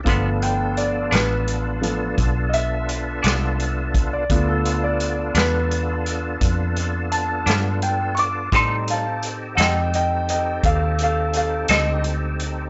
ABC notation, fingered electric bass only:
X:1
M:12/8
L:1/8
Q:3/8=57
K:Gdor
V:1 name="Fingered electric bass" clef=bass
G,,,3 A,,,3 =B,,,3 C,,3 | D,,3 E,,3 F,,3 G,,3 | A,,3 F,,3 _E,,3 D,,3 |]